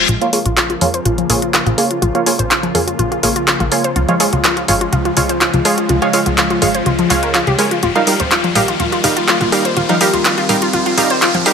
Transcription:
0.09 A#1 C#3 F3 A#3 F4, closed hi-hat, riser
0.21 A#3 F4 C#5 F5, closed hi-hat
0.33 A#3 F4 G#4 C#5 F5, open hi-hat
0.46 A#1 F4, closed hi-hat
0.57 F4, clap, closed hi-hat
0.70 F4, closed hi-hat
0.81 F2 A#3 F4 G#4 C#5 F5, open hi-hat
0.94 C5, closed hi-hat
1.05 A#1 F4, closed hi-hat
1.18 F3, closed hi-hat
1.30 A#1 A#3 F4 G#4 C#5 F5, open hi-hat
1.42 F4, closed hi-hat
1.54 F4, clap, closed hi-hat
1.67 A#1 F4, closed hi-hat
1.78 A#3 F4 G#4 C#5 F5, open hi-hat
1.91 F4, closed hi-hat
2.02 A#1 F4, closed hi-hat
2.15 A#3 F4 C#5 F5, closed hi-hat
2.26 A#3 F4 G#4 C#5 F5, open hi-hat
2.39 A#1 C5, closed hi-hat
2.50 F4, clap, closed hi-hat
2.63 F3, closed hi-hat
2.75 F2 A#3 F4 G#4 C#5 F5, open hi-hat
2.87 F4, closed hi-hat
2.99 A#1 F4, closed hi-hat
3.12 F4, closed hi-hat
3.23 A#1 A#3 F4 G#4 C#5 F5, open hi-hat
3.36 F4, closed hi-hat
3.47 F4, clap, closed hi-hat
3.60 A#1 F4, closed hi-hat
3.72 A#3 F4 G#4 C#5 F5, open hi-hat
3.84 C5, closed hi-hat
3.96 C#2 F3 G#3 F4, closed hi-hat
4.09 F3 G#3 F4 C#5 F5, closed hi-hat
4.20 G#3 F4 G#4 C#5 F5, open hi-hat
4.33 C#2 F4, closed hi-hat
4.44 F4, clap, closed hi-hat
4.57 F4, closed hi-hat
4.68 G#1 G#3 F4 G#4 C#5 F5, open hi-hat
4.81 F4, closed hi-hat
4.93 C#2 F4, closed hi-hat
5.05 F4, closed hi-hat
5.17 C#2 G#3 F4 G#4 C#5 F5, open hi-hat
5.29 C5, closed hi-hat
5.41 F4, clap, closed hi-hat
5.54 C#2 F3, closed hi-hat
5.65 G#3 F4 G#4 C#5 F5, open hi-hat
5.78 F4, closed hi-hat
5.89 C#2 F4, closed hi-hat
6.02 G#3 F4 C#5 F5, closed hi-hat
6.13 G#3 F4 G#4 C#5 F5, open hi-hat
6.26 C#2 F4, closed hi-hat
6.38 F4, clap, closed hi-hat
6.50 F4, closed hi-hat
6.62 G#1 G#3 F4 G#4 C#5 F5, open hi-hat
6.75 C5, closed hi-hat
6.86 C#2 F4, closed hi-hat
6.99 F3, closed hi-hat
7.10 C#2 G#3 F4 C#5 F5, clap, open hi-hat
7.23 A#4, closed hi-hat
7.34 F4, clap, closed hi-hat
7.47 C#2 G4, closed hi-hat
7.59 G#3 F4 A#4 C#5 G#5, open hi-hat
7.71 F4, closed hi-hat
7.83 D#1 D#3 G3 A#3 F4, closed hi-hat
7.96 G3 D#4 F4 A#4 F5, closed hi-hat
8.07 G3 D#4 G4 A#4 F5, open hi-hat
8.20 D#1 C5, closed hi-hat
8.31 F4, clap, closed hi-hat
8.44 F3, closed hi-hat
8.55 A#1 G3 D#4 G4 A#4 F5, open hi-hat
8.68 F4, closed hi-hat
8.80 D#1 F4, closed hi-hat
8.92 F4, closed hi-hat
9.04 D#1 G3 D#4 G4 A#4 F5, open hi-hat
9.17 F4, closed hi-hat
9.28 F4, clap, closed hi-hat
9.41 D#1 F4, closed hi-hat
9.52 G3 D#4 G4 A#4 F5, open hi-hat
9.65 C5, closed hi-hat
9.77 D#1 C4 F4, closed hi-hat
9.89 F3 G3 D#4 A#4 F5, closed hi-hat
10.01 G3 D#4 G4 A#4 F5, open hi-hat
10.13 D#1 F4, closed hi-hat
10.25 F4, clap, closed hi-hat
10.38 F4, closed hi-hat
10.49 A#1 G3 D#4 G4 A#4 F5, open hi-hat
10.62 F4, closed hi-hat
10.73 D#1 F4, closed hi-hat
10.86 F4, closed hi-hat
10.98 D#1 G3 D#4 G4 A#4 F5, open hi-hat
11.10 C5, closed hi-hat
11.22 F4, clap, closed hi-hat
11.34 D#1 F3, closed hi-hat
11.46 G3 D#4 G4 A#4 F5, open hi-hat

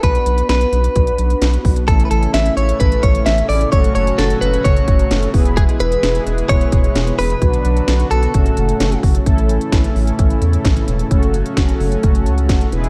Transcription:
0.03 B1 B3 D4 F#4 B4, kick, closed hi-hat
0.15 closed hi-hat
0.26 B1, closed hi-hat
0.38 closed hi-hat
0.49 B1 B4, snare, closed hi-hat
0.61 closed hi-hat
0.72 B1, closed hi-hat
0.84 closed hi-hat
0.96 B1, kick, closed hi-hat
1.07 closed hi-hat
1.18 B1, closed hi-hat
1.30 closed hi-hat
1.42 B1, snare, closed hi-hat
1.53 closed hi-hat
1.65 B1, kick, open hi-hat
1.76 closed hi-hat
1.88 A1 A2 C#3 E3 A3 C#4 E4 A4, kick, closed hi-hat
2.00 closed hi-hat
2.05 B4
2.11 A1 A4, closed hi-hat
2.23 closed hi-hat
2.34 A1 E5, snare, closed hi-hat
2.46 closed hi-hat
2.57 A1 C#5, closed hi-hat
2.69 closed hi-hat
2.80 A1 B4, kick, closed hi-hat
2.92 closed hi-hat
3.03 A1 C#5, kick, closed hi-hat
3.15 closed hi-hat
3.26 A1 E5, snare, closed hi-hat
3.38 closed hi-hat
3.49 A1 D5, open hi-hat
3.61 closed hi-hat
3.72 F#1 C#3 F#3 A3 C#4 F#4 A4 C#5, kick, closed hi-hat
3.84 closed hi-hat
3.95 F#1 C#5, closed hi-hat
4.07 closed hi-hat
4.18 F#1 A4, snare, closed hi-hat
4.30 closed hi-hat
4.41 F#1 B4, closed hi-hat
4.54 closed hi-hat
4.64 F#1 C#5, kick, closed hi-hat
4.77 closed hi-hat
4.88 F#1, kick, closed hi-hat
4.99 closed hi-hat
5.11 F#1, snare, closed hi-hat
5.23 closed hi-hat
5.34 E1 B2 E3 G#3 B3 E4 G#4 B4, kick, open hi-hat
5.45 closed hi-hat
5.57 G#4, kick, closed hi-hat
5.69 closed hi-hat
5.80 E1 B4, closed hi-hat
5.92 closed hi-hat
6.03 E1, snare, closed hi-hat
6.15 closed hi-hat
6.26 E1, closed hi-hat
6.38 closed hi-hat
6.49 E1 C#5, kick, closed hi-hat
6.61 closed hi-hat
6.72 E1, kick, closed hi-hat
6.84 closed hi-hat
6.95 E1, snare, closed hi-hat
7.07 closed hi-hat
7.19 E1 B4, open hi-hat
7.30 closed hi-hat
7.42 B1 D3 F#3 B3 D4 F#4 B4, kick, closed hi-hat
7.54 closed hi-hat
7.65 B1, closed hi-hat
7.77 closed hi-hat
7.88 B1, snare, closed hi-hat
8.00 closed hi-hat
8.11 B1 A4, closed hi-hat
8.23 closed hi-hat
8.34 F#1 A2 C#3 F#3 A3 C#4 F#4 A4, kick, closed hi-hat
8.46 closed hi-hat
8.57 F#1, closed hi-hat
8.69 closed hi-hat
8.80 F#1, snare, closed hi-hat
8.92 closed hi-hat
9.03 F#1, kick, open hi-hat
9.15 closed hi-hat
9.26 A1 A2 C#3 E3 A3 C#4 E4 A4, kick, closed hi-hat
9.38 closed hi-hat
9.49 closed hi-hat
9.61 closed hi-hat
9.72 A1, kick, snare, closed hi-hat
9.84 closed hi-hat
9.95 A1, open hi-hat
10.07 closed hi-hat
10.19 A1, kick, closed hi-hat
10.30 closed hi-hat
10.42 E2, closed hi-hat
10.53 closed hi-hat
10.65 A1, kick, snare, closed hi-hat
10.77 closed hi-hat
10.88 E1, closed hi-hat
10.99 closed hi-hat
11.11 F#1 F#3 A3 C#4 F#4 A4, kick, closed hi-hat
11.23 closed hi-hat
11.34 closed hi-hat
11.46 closed hi-hat
11.57 F#1, kick, snare, closed hi-hat
11.69 closed hi-hat
11.80 F#1, open hi-hat
11.92 closed hi-hat
12.03 F#1, kick, closed hi-hat
12.15 closed hi-hat
12.26 C#2, closed hi-hat
12.38 closed hi-hat
12.49 F#1, kick, snare, closed hi-hat
12.61 closed hi-hat
12.72 E1 B2 E3 G#3 B3 E4 G#4 B4, closed hi-hat
12.84 closed hi-hat

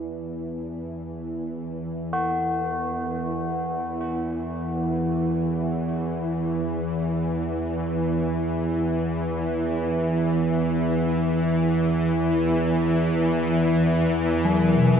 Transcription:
Already playing: E2 E3 D4 E4
2.13 F#4
14.44 B2 F#3

